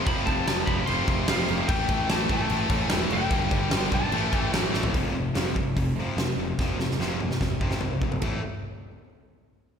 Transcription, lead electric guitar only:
0.07 B5
0.26 A5
0.66 B5
0.86 C6
1.29 F5
1.68 G5
2.11 A5
2.32 A5
2.87 G5
3.13 G5
3.94 A5
4.37 G5

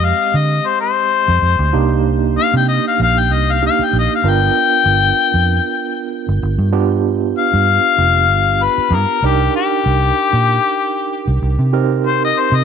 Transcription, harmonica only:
0.05 F5
0.37 D#5
0.66 C5
0.81 C5
2.39 F5
2.57 G5
2.69 D#5
2.88 F5
3.02 F5
3.19 G5
3.33 D#5
3.52 F5
3.66 F5
3.84 G5
3.99 D#5
4.15 F5
4.29 G5
7.39 F5
8.63 B4
8.94 A#4
9.26 G4
9.56 G4
12.07 C5
12.25 D#5
12.40 C5
12.56 D#5

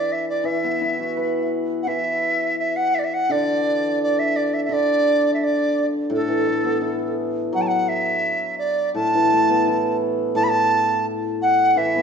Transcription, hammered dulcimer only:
Already playing: E3
0.44 E3
0.64 B3
0.82 E4
0.99 F#4
1.17 B4
1.87 E3
3.29 D3
4.69 D3
6.10 A2
6.28 E3
6.47 A3
6.64 B3
6.82 E4
7.53 F#3
8.95 A2
9.15 E3
9.33 A3
9.50 B3
9.68 E4
10.35 A2
11.76 E3
11.96 B3

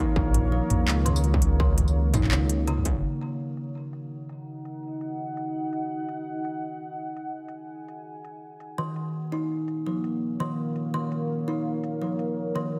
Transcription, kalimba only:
0.00 D#4
0.52 F3
1.06 D#3
1.60 D#3
2.14 D#4
2.68 C#3
8.78 D#3
9.32 D#4
9.87 F3
10.40 D#3
10.94 D#3
11.48 D#4
12.02 F3
12.56 D#3

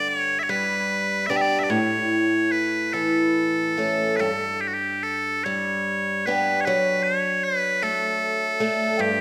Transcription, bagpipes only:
0.08 C#5
0.39 E5
0.43 C#5
0.50 B4
1.26 D5 E5
1.37 E5
1.41 D5
1.59 E5
1.64 D5
1.70 C#5
2.52 B4
2.93 A4
4.16 A4 B4
4.61 G4
4.68 F#4
4.74 G4
5.03 A4
5.44 C#5
6.26 B4
6.61 C#5
6.65 B4
7.03 C#5
7.44 B4
7.83 A4
9.01 G4

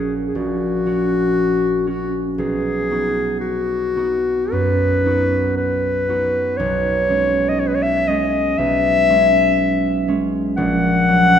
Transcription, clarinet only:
Already playing: G#4
0.28 G#4
0.36 F#4
1.88 F#4
2.38 G#4
3.40 F#4
4.52 B4
5.57 B4
6.57 C#5
7.49 D#5
7.59 C#5
7.67 B4
7.75 C#5
7.82 E5
8.07 D#5
8.58 E5
10.57 F#5

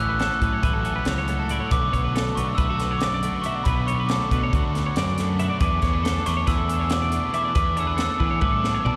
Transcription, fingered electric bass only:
Already playing: A1
0.42 A2
0.63 A1
1.06 C#2
1.72 B1
1.93 B1
2.37 B1
2.58 B1
3.66 B1
4.31 B2
4.53 D2
4.97 F#2
5.61 E2
5.83 E2
6.28 E2
6.48 E2
7.56 E2
8.20 E3
8.42 A2
8.85 B1

